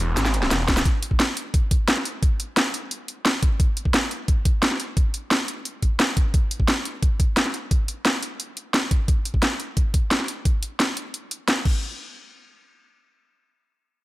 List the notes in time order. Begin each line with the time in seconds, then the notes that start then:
Already playing: E1
0.17 G#1, snare, closed hi-hat, cabasa
0.25 snare, cabasa
0.34 closed hi-hat
0.43 snare
0.51 E1, snare, closed hi-hat, cabasa
0.68 kick, snare, closed hi-hat, cabasa
0.77 snare, cabasa
0.85 kick, closed hi-hat
1.03 closed hi-hat
1.11 kick
1.20 snare, closed hi-hat
1.37 closed hi-hat
1.54 kick, closed hi-hat
1.71 kick, closed hi-hat
1.88 snare, closed hi-hat
1.97 snare
2.05 closed hi-hat
2.23 kick, closed hi-hat
2.40 closed hi-hat
2.57 snare, closed hi-hat
2.74 closed hi-hat
2.91 closed hi-hat
3.08 closed hi-hat
3.25 snare, closed hi-hat
3.43 kick, closed hi-hat
3.60 kick, closed hi-hat
3.77 closed hi-hat
3.85 kick
3.94 snare, closed hi-hat
4.11 closed hi-hat
4.28 kick, closed hi-hat
4.45 kick, closed hi-hat
4.63 snare, closed hi-hat
4.71 snare
4.80 closed hi-hat
4.97 kick, closed hi-hat
5.14 closed hi-hat
5.31 snare, closed hi-hat
5.48 closed hi-hat
5.65 closed hi-hat
5.82 kick, closed hi-hat
6.00 snare, closed hi-hat
6.17 kick, closed hi-hat
6.34 kick, closed hi-hat
6.51 closed hi-hat
6.60 kick
6.68 snare, closed hi-hat
6.85 closed hi-hat
7.03 kick, closed hi-hat
7.20 kick, closed hi-hat
7.37 snare, closed hi-hat
7.45 snare
7.54 closed hi-hat
7.71 kick, closed hi-hat
7.88 closed hi-hat
8.05 snare, closed hi-hat
8.23 closed hi-hat
8.40 closed hi-hat
8.57 closed hi-hat
8.74 snare, closed hi-hat
8.91 kick, closed hi-hat
9.08 kick, closed hi-hat
9.25 closed hi-hat
9.34 kick
9.43 snare, closed hi-hat
9.60 closed hi-hat
9.77 kick, closed hi-hat
9.94 kick, closed hi-hat
10.11 snare, closed hi-hat
10.20 snare
10.28 closed hi-hat
10.45 kick, closed hi-hat
10.63 closed hi-hat
10.80 snare, closed hi-hat
10.97 closed hi-hat
11.14 closed hi-hat
11.31 closed hi-hat
11.48 snare, closed hi-hat
11.65 kick, crash